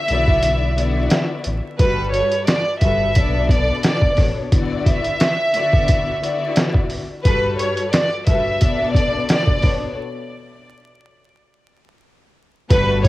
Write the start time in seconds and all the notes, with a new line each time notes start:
Already playing: E5
0.08 B1 D3 B3 E4 F#4 D5, closed hi-hat
0.28 kick
0.43 closed hi-hat
0.74 D3 B3 E4 F#4 D5, closed hi-hat
1.10 snare, closed hi-hat
1.44 A1, closed hi-hat
1.78 G1 G2 G3 F#4 A4 B4, kick, closed hi-hat
2.12 C#5, closed hi-hat
2.32 closed hi-hat
2.47 D5, snare, closed hi-hat
2.81 G1 G2 G3 F#4 A4 B4 E5, kick, closed hi-hat
3.15 B1 B2 B3 D4 A4 D5, kick, closed hi-hat
3.49 D5, kick, closed hi-hat
3.83 D5, snare, closed hi-hat
4.02 kick
4.15 A1 B2 B3 D4 A4 C#5, kick, open hi-hat
4.50 D3 B3 E4 F#4 D5, kick, closed hi-hat
4.85 E5, kick, closed hi-hat
5.04 closed hi-hat
5.20 snare, closed hi-hat
5.53 D3 B3 E4 F#4 D5, closed hi-hat
5.73 kick
5.88 kick, closed hi-hat
6.20 D3 B3 E4 F#4 D5, closed hi-hat
6.56 snare, closed hi-hat
6.74 kick
6.90 open hi-hat
7.24 G2 G3 F#4 A4 B4, kick, closed hi-hat
7.59 C#5, closed hi-hat
7.77 closed hi-hat
7.92 D5, snare, closed hi-hat
8.26 G2 G3 F#4 A4 B4 E5, kick, closed hi-hat
8.61 B2 B3 D4 A4 D5, kick, closed hi-hat
8.93 D5, kick, closed hi-hat
9.29 D5, snare, closed hi-hat
9.47 kick
9.61 B2 B3 D4 A4 C#5, kick, open hi-hat
12.69 G1 G2 D3 G3 A3 B3 F#4 A4 B4, kick, closed hi-hat
13.03 C#5, kick, closed hi-hat